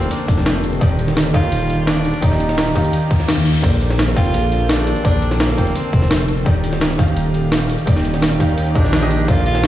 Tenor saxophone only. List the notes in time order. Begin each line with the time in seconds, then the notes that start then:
Already playing: C4
0.11 D4
1.35 F4
1.88 D4
2.23 D#4
4.17 F4
4.70 D4
5.05 D4
5.41 A#3
5.76 C4
8.75 D4
9.29 F4
9.46 F4